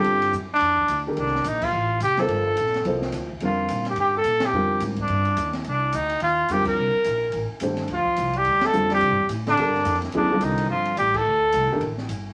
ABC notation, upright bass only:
X:1
M:4/4
L:1/8
Q:"Swing" 1/4=214
K:Gm
V:1 name="Upright bass" clef=bass
G,,2 ^F,,2 =F,,2 D,,2 | C,,2 B,,,2 A,,,2 F,,,2 | G,,,2 B,,,2 C,,2 D,,2 | F,,2 B,,2 G,,2 B,,2 |
F,,2 _A,,2 G,,2 E,,2 | C,,2 D,,2 E,,2 F,,2 | C,, z B,,,2 A,,, z G,,,2 | D,, z C,,2 D,,2 F,,2 |
(3C, G,, F,, A,,2 G,,2 F,,2 | D,,2 C,,2 G,,,2 A,,,2 | D,,2 (3C,, G,,, F,,, A,,,2 G,,,2 |]